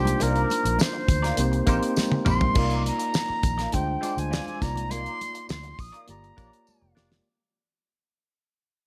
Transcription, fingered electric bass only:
0, 0, Header, 1, 3, 480
1, 0, Start_track
1, 0, Key_signature, -3, "minor"
1, 0, Tempo, 587659
1, 172, Time_signature, 4, 2, 24, 8
1, 7239, End_track
2, 0, Start_track
2, 0, Title_t, "Fingered electric bass"
2, 0, Program_c, 0, 33
2, 0, Note_on_c, 0, 36, 89
2, 112, Note_off_c, 0, 36, 0
2, 180, Note_on_c, 0, 36, 107
2, 358, Note_off_c, 0, 36, 0
2, 531, Note_on_c, 0, 34, 95
2, 622, Note_off_c, 0, 34, 0
2, 888, Note_on_c, 0, 38, 87
2, 1070, Note_off_c, 0, 38, 0
2, 1125, Note_on_c, 0, 36, 100
2, 1308, Note_off_c, 0, 36, 0
2, 1365, Note_on_c, 0, 34, 104
2, 1458, Note_off_c, 0, 34, 0
2, 1851, Note_on_c, 0, 34, 81
2, 2032, Note_off_c, 0, 34, 0
2, 2091, Note_on_c, 0, 36, 94
2, 2363, Note_off_c, 0, 36, 0
2, 2804, Note_on_c, 0, 34, 84
2, 2988, Note_off_c, 0, 34, 0
2, 3051, Note_on_c, 0, 38, 93
2, 3232, Note_off_c, 0, 38, 0
2, 3408, Note_on_c, 0, 38, 90
2, 3590, Note_off_c, 0, 38, 0
2, 3771, Note_on_c, 0, 36, 93
2, 4133, Note_off_c, 0, 36, 0
2, 4495, Note_on_c, 0, 38, 93
2, 4675, Note_off_c, 0, 38, 0
2, 4725, Note_on_c, 0, 34, 82
2, 4818, Note_off_c, 0, 34, 0
2, 4972, Note_on_c, 0, 31, 79
2, 5153, Note_off_c, 0, 31, 0
2, 5212, Note_on_c, 0, 34, 80
2, 5303, Note_off_c, 0, 34, 0
2, 5570, Note_on_c, 0, 29, 81
2, 5662, Note_off_c, 0, 29, 0
2, 5698, Note_on_c, 0, 29, 73
2, 5877, Note_off_c, 0, 29, 0
2, 7239, End_track
3, 0, Start_track
3, 0, Title_t, "Muted fingered electric bass strokes"
3, 2694, Note_on_c, 9, 29, 47
3, 2775, Note_off_c, 9, 29, 0
3, 7239, End_track
0, 0, End_of_file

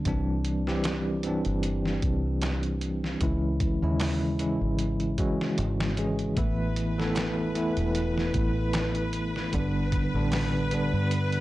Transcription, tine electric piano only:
0, 0, Header, 1, 2, 480
1, 0, Start_track
1, 0, Key_signature, 0, "minor"
1, 0, Tempo, 789474
1, 35, Time_signature, 4, 2, 24, 8
1, 6934, End_track
2, 0, Start_track
2, 0, Title_t, "Tine electric piano"
2, 0, Program_c, 0, 4
2, 0, Control_c, 0, 64, 127
2, 39, Note_on_c, 0, 52, 76
2, 41, Note_on_c, 0, 55, 73
2, 44, Control_c, 0, 64, 0
2, 45, Note_on_c, 0, 60, 69
2, 46, Note_on_c, 0, 62, 90
2, 152, Control_c, 0, 64, 127
2, 376, Note_off_c, 0, 52, 0
2, 377, Note_off_c, 0, 55, 0
2, 379, Note_off_c, 0, 60, 0
2, 379, Note_off_c, 0, 62, 0
2, 407, Note_on_c, 0, 52, 82
2, 411, Note_on_c, 0, 55, 77
2, 413, Note_on_c, 0, 60, 73
2, 415, Note_on_c, 0, 67, 94
2, 730, Note_off_c, 0, 52, 0
2, 732, Note_off_c, 0, 55, 0
2, 732, Note_off_c, 0, 60, 0
2, 734, Note_off_c, 0, 67, 0
2, 755, Note_on_c, 0, 52, 77
2, 760, Note_on_c, 0, 55, 69
2, 768, Note_on_c, 0, 60, 72
2, 772, Note_on_c, 0, 62, 85
2, 1929, Note_off_c, 0, 52, 0
2, 1931, Note_off_c, 0, 55, 0
2, 1935, Note_off_c, 0, 60, 0
2, 1937, Note_off_c, 0, 62, 0
2, 1957, Note_on_c, 0, 52, 68
2, 1960, Note_on_c, 0, 56, 67
2, 1962, Note_on_c, 0, 61, 68
2, 1963, Control_c, 0, 64, 0
2, 1965, Note_on_c, 0, 64, 80
2, 2081, Control_c, 0, 64, 127
2, 2295, Note_off_c, 0, 52, 0
2, 2296, Note_off_c, 0, 56, 0
2, 2297, Note_off_c, 0, 61, 0
2, 2299, Note_off_c, 0, 64, 0
2, 2325, Note_on_c, 0, 49, 77
2, 2326, Note_on_c, 0, 56, 70
2, 2329, Note_on_c, 0, 61, 68
2, 2333, Note_on_c, 0, 64, 84
2, 2649, Note_off_c, 0, 49, 0
2, 2649, Note_off_c, 0, 56, 0
2, 2650, Note_off_c, 0, 61, 0
2, 2653, Note_off_c, 0, 64, 0
2, 2674, Note_on_c, 0, 52, 67
2, 2675, Note_on_c, 0, 56, 60
2, 2679, Note_on_c, 0, 61, 58
2, 2682, Note_on_c, 0, 64, 74
2, 3133, Note_off_c, 0, 52, 0
2, 3133, Note_off_c, 0, 56, 0
2, 3135, Note_off_c, 0, 61, 0
2, 3136, Note_off_c, 0, 64, 0
2, 3151, Note_on_c, 0, 52, 78
2, 3155, Note_on_c, 0, 56, 78
2, 3159, Note_on_c, 0, 61, 75
2, 3160, Note_on_c, 0, 66, 85
2, 3607, Note_off_c, 0, 52, 0
2, 3609, Note_off_c, 0, 56, 0
2, 3611, Note_off_c, 0, 61, 0
2, 3611, Note_off_c, 0, 66, 0
2, 3634, Note_on_c, 0, 52, 68
2, 3635, Note_on_c, 0, 56, 63
2, 3640, Note_on_c, 0, 61, 60
2, 3641, Note_on_c, 0, 68, 74
2, 3848, Note_off_c, 0, 52, 0
2, 3849, Note_off_c, 0, 56, 0
2, 3851, Note_off_c, 0, 61, 0
2, 3852, Note_off_c, 0, 68, 0
2, 3872, Note_on_c, 0, 52, 81
2, 3873, Note_on_c, 0, 57, 70
2, 3876, Note_on_c, 0, 59, 72
2, 3879, Note_on_c, 0, 64, 84
2, 3884, Control_c, 0, 64, 0
2, 3975, Control_c, 0, 64, 127
2, 4213, Note_off_c, 0, 52, 0
2, 4213, Note_off_c, 0, 57, 0
2, 4215, Note_off_c, 0, 59, 0
2, 4216, Note_off_c, 0, 64, 0
2, 4245, Note_on_c, 0, 52, 84
2, 4249, Note_on_c, 0, 57, 77
2, 4251, Note_on_c, 0, 59, 78
2, 4253, Note_on_c, 0, 69, 93
2, 4569, Note_off_c, 0, 52, 0
2, 4571, Note_off_c, 0, 57, 0
2, 4571, Note_off_c, 0, 59, 0
2, 4573, Note_off_c, 0, 69, 0
2, 4587, Note_on_c, 0, 52, 78
2, 4593, Note_on_c, 0, 57, 69
2, 4599, Note_on_c, 0, 59, 67
2, 4604, Note_on_c, 0, 64, 91
2, 5765, Note_off_c, 0, 52, 0
2, 5768, Note_off_c, 0, 57, 0
2, 5771, Note_off_c, 0, 59, 0
2, 5773, Note_off_c, 0, 64, 0
2, 5796, Note_on_c, 0, 50, 75
2, 5796, Note_on_c, 0, 55, 68
2, 5800, Note_on_c, 0, 59, 70
2, 5803, Control_c, 0, 64, 0
2, 5803, Note_on_c, 0, 62, 80
2, 5926, Control_c, 0, 64, 127
2, 6134, Note_off_c, 0, 50, 0
2, 6134, Note_off_c, 0, 55, 0
2, 6137, Note_off_c, 0, 59, 0
2, 6138, Note_off_c, 0, 62, 0
2, 6170, Note_on_c, 0, 50, 77
2, 6174, Note_on_c, 0, 55, 68
2, 6175, Note_on_c, 0, 59, 66
2, 6179, Note_on_c, 0, 62, 85
2, 6491, Note_off_c, 0, 50, 0
2, 6493, Note_off_c, 0, 55, 0
2, 6493, Note_off_c, 0, 59, 0
2, 6496, Note_off_c, 0, 62, 0
2, 6514, Note_on_c, 0, 50, 69
2, 6519, Note_on_c, 0, 55, 64
2, 6525, Note_on_c, 0, 59, 63
2, 6530, Note_on_c, 0, 62, 74
2, 6934, Note_off_c, 0, 50, 0
2, 6934, Note_off_c, 0, 55, 0
2, 6934, Note_off_c, 0, 59, 0
2, 6934, Note_off_c, 0, 62, 0
2, 6934, End_track
0, 0, End_of_file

